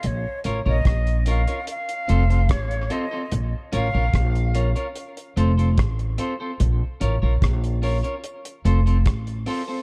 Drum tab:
HH |x-x-xxxxxxxxxxx-|x-x-xxxxxxxxxxx-|x-x-xxoxxxxxxxo-|
SD |----r-------r---|----r-------r---|----r-------r---|
BD |----o-------o---|----o-------o---|----o-------o---|